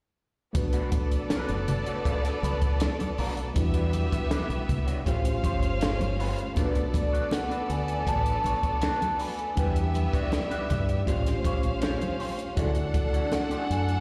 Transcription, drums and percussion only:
0.55 kick loud
0.55 closed hi-hat medium
0.55 muted conga medium
0.73 closed hi-hat medium
0.92 kick medium
0.92 closed hi-hat medium
0.92 muted conga soft
1.12 closed hi-hat soft
1.30 snare medium
1.30 closed hi-hat loud
1.30 high conga medium
1.49 closed hi-hat soft
1.68 closed hi-hat medium
1.68 low conga medium
1.86 closed hi-hat soft
2.05 kick medium
2.05 closed hi-hat medium
2.25 snare soft
2.25 closed hi-hat medium
2.43 closed hi-hat medium
2.43 muted conga soft
2.62 kick medium
2.62 closed hi-hat soft
2.80 snare loud
2.80 closed hi-hat medium
2.80 high conga medium
3.00 closed hi-hat soft
3.00 high conga medium
3.18 open hi-hat medium
3.37 closed hi-hat soft
3.56 kick loud
3.56 closed hi-hat medium
3.56 muted conga medium
3.74 closed hi-hat medium
3.93 closed hi-hat medium
3.93 muted conga soft
4.12 kick medium
4.12 closed hi-hat medium
4.31 snare loud
4.31 closed hi-hat loud
4.31 high conga medium
4.50 closed hi-hat soft
4.69 kick medium
4.69 closed hi-hat medium
4.69 low conga medium
4.88 closed hi-hat medium
5.06 kick medium
5.06 closed hi-hat medium
5.06 muted conga soft
5.25 closed hi-hat medium
5.44 kick medium
5.44 closed hi-hat medium
5.44 muted conga soft
5.63 closed hi-hat soft
5.81 snare loud
5.81 closed hi-hat medium
5.81 high conga medium
6.01 closed hi-hat soft
6.01 high conga medium
6.20 open hi-hat medium
6.38 closed hi-hat soft
6.56 kick loud
6.56 closed hi-hat medium
6.56 muted conga medium
6.75 closed hi-hat soft
6.94 kick medium
6.94 closed hi-hat medium
6.94 muted conga soft
7.14 closed hi-hat soft
7.31 snare loud
7.31 closed hi-hat loud
7.31 high conga medium
7.51 closed hi-hat soft
7.70 closed hi-hat medium
7.88 closed hi-hat soft
8.07 kick medium
8.07 closed hi-hat medium
8.26 closed hi-hat medium
8.44 closed hi-hat medium
8.44 muted conga soft
8.63 kick medium
8.63 closed hi-hat soft
8.82 snare medium
8.82 closed hi-hat medium
8.82 high conga medium
9.02 closed hi-hat soft
9.02 high conga medium
9.19 open hi-hat medium
9.39 closed hi-hat soft
9.57 kick medium
9.57 closed hi-hat medium
9.57 muted conga medium
9.76 closed hi-hat soft
9.94 closed hi-hat medium
9.94 muted conga soft
10.13 kick medium
10.13 closed hi-hat soft
10.32 snare medium
10.32 closed hi-hat medium
10.32 high conga medium
10.51 closed hi-hat soft
10.70 kick medium
10.70 snare soft
10.70 closed hi-hat medium
10.70 low conga medium
10.89 closed hi-hat soft
11.07 kick medium
11.07 closed hi-hat medium
11.07 muted conga soft
11.26 snare soft
11.26 closed hi-hat medium
11.45 kick medium
11.45 closed hi-hat medium
11.45 muted conga soft
11.63 closed hi-hat soft
11.82 snare loud
11.82 closed hi-hat medium
11.82 high conga medium
12.01 closed hi-hat soft
12.01 high conga medium
12.20 open hi-hat medium
12.39 closed hi-hat soft
12.57 kick loud
12.57 closed hi-hat medium
12.57 muted conga medium
12.75 closed hi-hat medium
12.94 kick medium
12.94 closed hi-hat medium
12.94 muted conga soft
13.14 closed hi-hat soft
13.32 snare medium
13.32 closed hi-hat medium
13.32 high conga medium
13.51 closed hi-hat soft
13.71 closed hi-hat medium
13.89 closed hi-hat soft

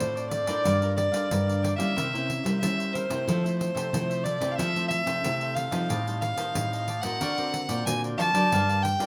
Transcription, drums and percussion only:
0.00 pandeiro medium
0.17 pandeiro soft
0.31 pandeiro medium
0.47 pandeiro medium
0.65 pandeiro medium
0.82 pandeiro soft
0.98 pandeiro medium
1.14 pandeiro medium
1.31 pandeiro medium
1.49 pandeiro soft
1.64 pandeiro medium
1.80 pandeiro medium
1.98 pandeiro medium
2.15 pandeiro soft
2.30 pandeiro medium
2.46 pandeiro medium
2.63 pandeiro medium
2.80 pandeiro soft
2.95 pandeiro medium
3.11 pandeiro medium
3.29 pandeiro medium
3.46 pandeiro soft
3.61 pandeiro medium
3.77 pandeiro medium
3.94 pandeiro medium
4.11 pandeiro soft
4.26 pandeiro medium
4.42 pandeiro medium
4.59 pandeiro medium
4.76 pandeiro soft
4.91 pandeiro medium
5.07 pandeiro medium
5.24 pandeiro medium
5.41 pandeiro soft
5.56 pandeiro medium
5.72 pandeiro medium
5.90 pandeiro medium
6.07 pandeiro soft
6.22 pandeiro medium
6.38 pandeiro medium
6.55 pandeiro medium
6.73 pandeiro soft
6.88 pandeiro medium
7.03 pandeiro medium
7.21 pandeiro medium
7.38 pandeiro soft
7.54 pandeiro medium
7.69 pandeiro medium
7.87 pandeiro medium
8.04 pandeiro soft
8.20 pandeiro medium
8.35 pandeiro medium
8.52 pandeiro medium
8.69 pandeiro soft
8.85 pandeiro medium
9.00 pandeiro medium

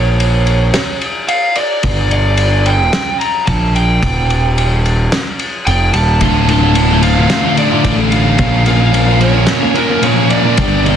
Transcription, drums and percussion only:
0.20 ride medium
0.47 ride medium
0.74 snare medium
0.74 ride medium
1.01 ride medium
1.29 ride medium
1.56 ride medium
1.83 kick loud
1.83 ride loud
2.11 ride medium
2.37 ride medium
2.66 ride medium
2.93 snare loud
2.93 ride medium
3.21 ride medium
3.47 kick medium
3.47 ride medium
3.76 ride medium
4.03 kick loud
4.03 ride medium
4.30 ride medium
4.58 ride medium
4.86 ride medium
5.12 snare loud
5.12 ride medium
5.39 ride medium
5.67 ride medium
5.94 ride medium
6.21 kick loud
6.21 ride loud
6.49 ride medium
6.75 ride medium
7.03 ride medium
7.30 snare loud
7.30 ride medium
7.57 ride medium
7.84 kick medium
7.84 ride medium
8.12 ride medium
8.38 kick loud
8.38 ride medium
8.66 ride medium
8.94 ride medium
9.21 ride medium
9.47 snare medium
9.47 ride medium
9.75 ride medium
10.03 ride medium
10.30 ride medium
10.57 kick loud
10.57 ride loud
10.86 ride medium

